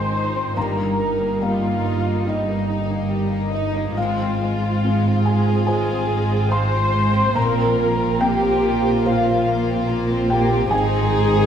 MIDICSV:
0, 0, Header, 1, 9, 480
1, 0, Start_track
1, 0, Tempo, 852273
1, 317, Time_signature, 4, 2, 24, 8
1, 3196, Tempo, 839161
1, 6505, End_track
2, 0, Start_track
2, 0, Title_t, "Flute section"
2, 0, Program_c, 0, 73
2, 0, Note_on_c, 0, 84, 51
2, 325, Note_off_c, 0, 84, 0
2, 327, Note_on_c, 0, 82, 56
2, 792, Note_off_c, 0, 82, 0
2, 796, Note_on_c, 0, 77, 51
2, 1276, Note_off_c, 0, 77, 0
2, 1283, Note_on_c, 0, 75, 46
2, 1755, Note_off_c, 0, 75, 0
2, 1995, Note_on_c, 0, 75, 49
2, 2220, Note_off_c, 0, 75, 0
2, 2231, Note_on_c, 0, 77, 52
2, 2949, Note_on_c, 0, 80, 58
2, 2957, Note_off_c, 0, 77, 0
2, 3188, Note_off_c, 0, 80, 0
2, 3195, Note_on_c, 0, 80, 70
2, 3668, Note_off_c, 0, 80, 0
2, 3674, Note_on_c, 0, 84, 74
2, 4159, Note_off_c, 0, 84, 0
2, 4162, Note_on_c, 0, 82, 65
2, 4642, Note_on_c, 0, 79, 74
2, 4646, Note_off_c, 0, 82, 0
2, 5124, Note_on_c, 0, 77, 67
2, 5127, Note_off_c, 0, 79, 0
2, 5607, Note_off_c, 0, 77, 0
2, 5851, Note_on_c, 0, 79, 68
2, 6069, Note_off_c, 0, 79, 0
2, 6086, Note_on_c, 0, 80, 67
2, 6505, Note_off_c, 0, 80, 0
2, 6505, End_track
3, 0, Start_track
3, 0, Title_t, "Felt piano"
3, 0, Program_c, 1, 0
3, 0, Control_c, 1, 64, 127
3, 0, Note_on_c, 1, 44, 38
3, 0, Note_on_c, 1, 65, 32
3, 0, Note_on_c, 1, 75, 36
3, 0, Note_on_c, 1, 80, 47
3, 0, Note_on_c, 1, 84, 62
3, 297, Note_off_c, 1, 44, 0
3, 297, Note_off_c, 1, 65, 0
3, 297, Note_off_c, 1, 84, 0
3, 299, Note_off_c, 1, 75, 0
3, 320, Note_on_c, 1, 43, 38
3, 321, Note_on_c, 1, 82, 65
3, 326, Control_c, 1, 64, 0
3, 329, Note_off_c, 1, 80, 0
3, 427, Control_c, 1, 64, 127
3, 776, Note_off_c, 1, 82, 0
3, 801, Note_on_c, 1, 58, 33
3, 803, Note_on_c, 1, 77, 55
3, 1258, Note_off_c, 1, 77, 0
3, 1278, Note_on_c, 1, 63, 37
3, 1285, Note_on_c, 1, 75, 41
3, 1564, Note_off_c, 1, 58, 0
3, 1990, Note_off_c, 1, 75, 0
3, 1998, Note_on_c, 1, 75, 47
3, 2214, Note_off_c, 1, 63, 0
3, 2215, Note_off_c, 1, 43, 0
3, 2222, Note_off_c, 1, 75, 0
3, 2236, Note_on_c, 1, 77, 61
3, 2239, Note_on_c, 1, 44, 43
3, 2245, Control_c, 1, 64, 0
3, 2332, Control_c, 1, 64, 127
3, 2726, Note_on_c, 1, 60, 36
3, 2937, Note_off_c, 1, 77, 0
3, 2960, Note_on_c, 1, 80, 60
3, 3182, Note_off_c, 1, 80, 0
3, 3192, Note_on_c, 1, 80, 63
3, 3199, Note_on_c, 1, 65, 40
3, 3199, Note_on_c, 1, 72, 45
3, 3490, Note_off_c, 1, 60, 0
3, 3653, Note_off_c, 1, 80, 0
3, 3678, Note_on_c, 1, 84, 71
3, 4138, Note_off_c, 1, 84, 0
3, 4139, Note_off_c, 1, 72, 0
3, 4140, Note_off_c, 1, 65, 0
3, 4141, Note_off_c, 1, 44, 0
3, 4157, Note_on_c, 1, 82, 75
3, 4159, Note_on_c, 1, 46, 45
3, 4173, Control_c, 1, 64, 0
3, 4276, Control_c, 1, 64, 127
3, 4621, Note_off_c, 1, 82, 0
3, 4645, Note_on_c, 1, 79, 86
3, 4647, Note_on_c, 1, 60, 45
3, 5105, Note_off_c, 1, 79, 0
3, 5129, Note_on_c, 1, 65, 44
3, 5132, Note_on_c, 1, 72, 48
3, 5132, Note_on_c, 1, 77, 58
3, 5419, Note_off_c, 1, 60, 0
3, 5588, Note_off_c, 1, 77, 0
3, 5842, Note_on_c, 1, 79, 73
3, 6059, Note_off_c, 1, 46, 0
3, 6060, Note_off_c, 1, 65, 0
3, 6062, Note_off_c, 1, 72, 0
3, 6064, Note_off_c, 1, 79, 0
3, 6075, Note_on_c, 1, 80, 80
3, 6081, Note_on_c, 1, 44, 52
3, 6094, Control_c, 1, 64, 0
3, 6192, Control_c, 1, 64, 127
3, 6505, Note_off_c, 1, 44, 0
3, 6505, Note_off_c, 1, 80, 0
3, 6505, End_track
4, 0, Start_track
4, 0, Title_t, "Viola section"
4, 0, Program_c, 2, 48
4, 0, Note_on_c, 2, 72, 57
4, 322, Note_off_c, 2, 72, 0
4, 327, Note_on_c, 2, 70, 47
4, 801, Note_off_c, 2, 70, 0
4, 801, Note_on_c, 2, 65, 59
4, 1279, Note_off_c, 2, 65, 0
4, 1288, Note_on_c, 2, 63, 46
4, 1758, Note_off_c, 2, 63, 0
4, 2000, Note_on_c, 2, 63, 47
4, 2223, Note_off_c, 2, 63, 0
4, 2236, Note_on_c, 2, 65, 58
4, 2958, Note_on_c, 2, 68, 65
4, 2959, Note_off_c, 2, 65, 0
4, 3190, Note_off_c, 2, 68, 0
4, 3197, Note_on_c, 2, 68, 65
4, 3669, Note_off_c, 2, 68, 0
4, 3678, Note_on_c, 2, 72, 72
4, 4152, Note_off_c, 2, 72, 0
4, 4170, Note_on_c, 2, 70, 73
4, 4649, Note_on_c, 2, 67, 76
4, 4650, Note_off_c, 2, 70, 0
4, 5129, Note_on_c, 2, 65, 55
4, 5130, Note_off_c, 2, 67, 0
4, 5609, Note_off_c, 2, 65, 0
4, 5850, Note_on_c, 2, 67, 63
4, 6068, Note_off_c, 2, 67, 0
4, 6091, Note_on_c, 2, 68, 70
4, 6505, Note_off_c, 2, 68, 0
4, 6505, End_track
5, 0, Start_track
5, 0, Title_t, "Violin section"
5, 0, Program_c, 3, 48
5, 0, Note_on_c, 3, 63, 37
5, 298, Note_off_c, 3, 63, 0
5, 315, Note_on_c, 3, 63, 39
5, 2212, Note_off_c, 3, 63, 0
5, 2237, Note_on_c, 3, 65, 46
5, 4162, Note_off_c, 3, 65, 0
5, 4169, Note_on_c, 3, 65, 47
5, 6064, Note_off_c, 3, 65, 0
5, 6089, Note_on_c, 3, 68, 58
5, 6505, Note_off_c, 3, 68, 0
5, 6505, End_track
6, 0, Start_track
6, 0, Title_t, "Harp"
6, 0, Program_c, 4, 46
6, 0, Note_on_c, 4, 44, 36
6, 0, Note_on_c, 4, 51, 30
6, 0, Note_on_c, 4, 53, 32
6, 0, Note_on_c, 4, 60, 35
6, 0, Note_on_c, 4, 65, 33
6, 3, Note_on_c, 4, 75, 32
6, 159, Note_off_c, 4, 65, 0
6, 166, Note_on_c, 4, 65, 32
6, 320, Note_off_c, 4, 53, 0
6, 325, Note_on_c, 4, 43, 40
6, 340, Note_off_c, 4, 44, 0
6, 340, Note_off_c, 4, 65, 0
6, 342, Note_off_c, 4, 51, 0
6, 342, Note_off_c, 4, 60, 0
6, 481, Note_on_c, 4, 55, 34
6, 643, Note_on_c, 4, 58, 29
6, 803, Note_on_c, 4, 63, 31
6, 956, Note_off_c, 4, 75, 0
6, 963, Note_on_c, 4, 75, 35
6, 1114, Note_off_c, 4, 63, 0
6, 1121, Note_on_c, 4, 63, 35
6, 1274, Note_off_c, 4, 43, 0
6, 1281, Note_on_c, 4, 43, 39
6, 1433, Note_off_c, 4, 55, 0
6, 1439, Note_on_c, 4, 55, 29
6, 1591, Note_off_c, 4, 58, 0
6, 1598, Note_on_c, 4, 58, 35
6, 1751, Note_off_c, 4, 63, 0
6, 1758, Note_on_c, 4, 63, 35
6, 1907, Note_off_c, 4, 75, 0
6, 1913, Note_on_c, 4, 75, 37
6, 2067, Note_off_c, 4, 63, 0
6, 2074, Note_on_c, 4, 63, 36
6, 2240, Note_on_c, 4, 44, 47
6, 2256, Note_off_c, 4, 63, 0
6, 2256, Note_off_c, 4, 75, 0
6, 2257, Note_off_c, 4, 43, 0
6, 2258, Note_off_c, 4, 55, 0
6, 2258, Note_off_c, 4, 58, 0
6, 2405, Note_on_c, 4, 56, 34
6, 2722, Note_on_c, 4, 65, 38
6, 2887, Note_on_c, 4, 68, 40
6, 3034, Note_off_c, 4, 65, 0
6, 3041, Note_on_c, 4, 65, 41
6, 3195, Note_off_c, 4, 44, 0
6, 3202, Note_on_c, 4, 44, 39
6, 3358, Note_off_c, 4, 56, 0
6, 3364, Note_on_c, 4, 56, 35
6, 3677, Note_off_c, 4, 65, 0
6, 3684, Note_on_c, 4, 65, 39
6, 3998, Note_off_c, 4, 65, 0
6, 4005, Note_on_c, 4, 65, 43
6, 4164, Note_on_c, 4, 46, 53
6, 4183, Note_off_c, 4, 44, 0
6, 4184, Note_off_c, 4, 56, 0
6, 4328, Note_on_c, 4, 53, 45
6, 4486, Note_on_c, 4, 58, 42
6, 4639, Note_off_c, 4, 65, 0
6, 4646, Note_on_c, 4, 65, 43
6, 4810, Note_on_c, 4, 70, 45
6, 4966, Note_off_c, 4, 65, 0
6, 4973, Note_on_c, 4, 65, 48
6, 5113, Note_off_c, 4, 68, 0
6, 5127, Note_off_c, 4, 46, 0
6, 5134, Note_on_c, 4, 46, 48
6, 5286, Note_off_c, 4, 53, 0
6, 5293, Note_on_c, 4, 53, 37
6, 5603, Note_off_c, 4, 65, 0
6, 5610, Note_on_c, 4, 65, 52
6, 5921, Note_off_c, 4, 65, 0
6, 5928, Note_on_c, 4, 65, 48
6, 6082, Note_on_c, 4, 44, 58
6, 6105, Note_off_c, 4, 46, 0
6, 6247, Note_on_c, 4, 51, 49
6, 6401, Note_on_c, 4, 63, 46
6, 6505, Note_off_c, 4, 44, 0
6, 6505, Note_off_c, 4, 51, 0
6, 6505, Note_off_c, 4, 53, 0
6, 6505, Note_off_c, 4, 58, 0
6, 6505, Note_off_c, 4, 63, 0
6, 6505, Note_off_c, 4, 65, 0
6, 6505, Note_off_c, 4, 70, 0
6, 6505, End_track
7, 0, Start_track
7, 0, Title_t, "Violin section"
7, 0, Program_c, 5, 48
7, 0, Note_on_c, 5, 60, 33
7, 81, Note_off_c, 5, 60, 0
7, 82, Note_on_c, 5, 63, 37
7, 199, Note_on_c, 5, 60, 37
7, 200, Note_off_c, 5, 63, 0
7, 318, Note_off_c, 5, 60, 0
7, 322, Note_on_c, 5, 55, 42
7, 322, Note_on_c, 5, 58, 43
7, 431, Note_off_c, 5, 55, 0
7, 431, Note_off_c, 5, 58, 0
7, 438, Note_on_c, 5, 58, 38
7, 557, Note_off_c, 5, 58, 0
7, 557, Note_on_c, 5, 63, 34
7, 675, Note_on_c, 5, 58, 38
7, 677, Note_off_c, 5, 63, 0
7, 796, Note_off_c, 5, 58, 0
7, 799, Note_on_c, 5, 55, 41
7, 919, Note_off_c, 5, 55, 0
7, 922, Note_on_c, 5, 58, 38
7, 1036, Note_on_c, 5, 63, 38
7, 1040, Note_off_c, 5, 58, 0
7, 1157, Note_off_c, 5, 63, 0
7, 1163, Note_on_c, 5, 58, 39
7, 1280, Note_off_c, 5, 58, 0
7, 1280, Note_on_c, 5, 55, 36
7, 1389, Note_off_c, 5, 55, 0
7, 1394, Note_on_c, 5, 58, 35
7, 1509, Note_on_c, 5, 63, 38
7, 1513, Note_off_c, 5, 58, 0
7, 1630, Note_off_c, 5, 63, 0
7, 1636, Note_on_c, 5, 58, 42
7, 1745, Note_on_c, 5, 55, 44
7, 1754, Note_off_c, 5, 58, 0
7, 1863, Note_on_c, 5, 58, 40
7, 1868, Note_off_c, 5, 55, 0
7, 1982, Note_on_c, 5, 63, 46
7, 1988, Note_off_c, 5, 58, 0
7, 2109, Note_off_c, 5, 63, 0
7, 2111, Note_on_c, 5, 58, 39
7, 2234, Note_off_c, 5, 58, 0
7, 2241, Note_on_c, 5, 60, 43
7, 2243, Note_on_c, 5, 56, 47
7, 2353, Note_off_c, 5, 56, 0
7, 2357, Note_off_c, 5, 60, 0
7, 2364, Note_on_c, 5, 60, 48
7, 2482, Note_off_c, 5, 60, 0
7, 2495, Note_on_c, 5, 56, 40
7, 2604, Note_on_c, 5, 60, 40
7, 2608, Note_off_c, 5, 56, 0
7, 2722, Note_off_c, 5, 60, 0
7, 2728, Note_on_c, 5, 56, 47
7, 2843, Note_off_c, 5, 56, 0
7, 2852, Note_on_c, 5, 60, 40
7, 2965, Note_off_c, 5, 60, 0
7, 2973, Note_on_c, 5, 56, 44
7, 3086, Note_off_c, 5, 56, 0
7, 3092, Note_on_c, 5, 60, 45
7, 3205, Note_off_c, 5, 60, 0
7, 3211, Note_on_c, 5, 56, 47
7, 3317, Note_off_c, 5, 56, 0
7, 3329, Note_on_c, 5, 60, 41
7, 3444, Note_off_c, 5, 60, 0
7, 3456, Note_on_c, 5, 56, 43
7, 3567, Note_off_c, 5, 56, 0
7, 3568, Note_on_c, 5, 60, 47
7, 3683, Note_off_c, 5, 60, 0
7, 3686, Note_on_c, 5, 56, 47
7, 3803, Note_off_c, 5, 56, 0
7, 3803, Note_on_c, 5, 60, 45
7, 3919, Note_on_c, 5, 56, 51
7, 3921, Note_off_c, 5, 60, 0
7, 4040, Note_off_c, 5, 56, 0
7, 4041, Note_on_c, 5, 60, 50
7, 4148, Note_off_c, 5, 60, 0
7, 4155, Note_on_c, 5, 60, 51
7, 4159, Note_on_c, 5, 58, 56
7, 4272, Note_off_c, 5, 60, 0
7, 4273, Note_off_c, 5, 58, 0
7, 4278, Note_on_c, 5, 60, 47
7, 4399, Note_on_c, 5, 58, 45
7, 4402, Note_off_c, 5, 60, 0
7, 4507, Note_on_c, 5, 60, 46
7, 4523, Note_off_c, 5, 58, 0
7, 4637, Note_off_c, 5, 60, 0
7, 4637, Note_on_c, 5, 58, 51
7, 4761, Note_on_c, 5, 60, 54
7, 4762, Note_off_c, 5, 58, 0
7, 4877, Note_on_c, 5, 58, 49
7, 4885, Note_off_c, 5, 60, 0
7, 5001, Note_on_c, 5, 60, 52
7, 5003, Note_off_c, 5, 58, 0
7, 5115, Note_on_c, 5, 58, 54
7, 5125, Note_off_c, 5, 60, 0
7, 5234, Note_off_c, 5, 58, 0
7, 5245, Note_on_c, 5, 60, 47
7, 5367, Note_off_c, 5, 60, 0
7, 5375, Note_on_c, 5, 58, 50
7, 5492, Note_off_c, 5, 58, 0
7, 5494, Note_on_c, 5, 60, 52
7, 5604, Note_on_c, 5, 58, 54
7, 5611, Note_off_c, 5, 60, 0
7, 5725, Note_off_c, 5, 58, 0
7, 5725, Note_on_c, 5, 60, 54
7, 5845, Note_off_c, 5, 60, 0
7, 5845, Note_on_c, 5, 58, 62
7, 5963, Note_on_c, 5, 60, 58
7, 5964, Note_off_c, 5, 58, 0
7, 6078, Note_off_c, 5, 60, 0
7, 6084, Note_on_c, 5, 63, 70
7, 6085, Note_on_c, 5, 60, 64
7, 6505, Note_off_c, 5, 60, 0
7, 6505, Note_off_c, 5, 63, 0
7, 6505, End_track
8, 0, Start_track
8, 0, Title_t, "Cello section"
8, 0, Program_c, 6, 48
8, 0, Note_on_c, 6, 44, 37
8, 295, Note_off_c, 6, 44, 0
8, 323, Note_on_c, 6, 43, 40
8, 2216, Note_off_c, 6, 43, 0
8, 2236, Note_on_c, 6, 44, 53
8, 4139, Note_off_c, 6, 44, 0
8, 4163, Note_on_c, 6, 46, 50
8, 6061, Note_off_c, 6, 46, 0
8, 6081, Note_on_c, 6, 44, 68
8, 6505, Note_off_c, 6, 44, 0
8, 6505, End_track
9, 0, Start_track
9, 0, Title_t, "Double bass section"
9, 0, Program_c, 7, 48
9, 0, Note_on_c, 7, 32, 41
9, 298, Note_off_c, 7, 32, 0
9, 322, Note_on_c, 7, 31, 47
9, 2216, Note_off_c, 7, 31, 0
9, 2240, Note_on_c, 7, 32, 47
9, 4141, Note_off_c, 7, 32, 0
9, 4167, Note_on_c, 7, 34, 61
9, 6063, Note_off_c, 7, 34, 0
9, 6085, Note_on_c, 7, 32, 65
9, 6505, Note_off_c, 7, 32, 0
9, 6505, End_track
0, 0, End_of_file